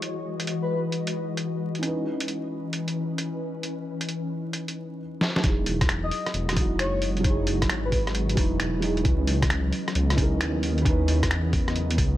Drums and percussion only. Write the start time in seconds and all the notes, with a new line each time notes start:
0.02 closed hi-hat
0.40 closed hi-hat
0.47 closed hi-hat
0.92 closed hi-hat
1.07 closed hi-hat
1.37 closed hi-hat
1.75 closed hi-hat
1.83 closed hi-hat
2.20 closed hi-hat
2.28 closed hi-hat
2.73 closed hi-hat
2.88 closed hi-hat
3.18 closed hi-hat
3.63 closed hi-hat
4.01 closed hi-hat
4.09 closed hi-hat
4.53 closed hi-hat
4.68 closed hi-hat
5.21 snare
5.36 snare
5.44 kick, closed hi-hat
5.66 open hi-hat
5.81 kick, cross-stick, closed hi-hat
5.89 finger snap, cross-stick, closed hi-hat
6.11 open hi-hat
6.26 cross-stick, closed hi-hat
6.34 closed hi-hat
6.49 cross-stick, closed hi-hat
6.57 kick, open hi-hat
6.79 finger snap, closed hi-hat
7.02 open hi-hat
7.17 closed hi-hat
7.24 kick, closed hi-hat
7.47 open hi-hat
7.62 kick, cross-stick, closed hi-hat
7.69 finger snap, cross-stick, closed hi-hat
7.92 kick, open hi-hat
8.07 cross-stick, closed hi-hat
8.15 closed hi-hat
8.29 closed hi-hat
8.37 kick, open hi-hat
8.60 finger snap, closed hi-hat
8.82 open hi-hat
8.97 closed hi-hat
9.05 kick, closed hi-hat
9.27 open hi-hat
9.42 kick, cross-stick, closed hi-hat
9.50 finger snap, cross-stick, closed hi-hat
9.73 open hi-hat
9.88 cross-stick, closed hi-hat
9.95 closed hi-hat
10.10 cross-stick, closed hi-hat
10.18 kick, open hi-hat
10.41 finger snap, closed hi-hat
10.63 open hi-hat
10.78 closed hi-hat
10.85 kick, closed hi-hat
11.08 open hi-hat
11.23 kick, cross-stick, closed hi-hat
11.31 finger snap, cross-stick, closed hi-hat
11.53 kick, open hi-hat
11.68 cross-stick, closed hi-hat
11.76 closed hi-hat
11.91 closed hi-hat
11.98 kick, open hi-hat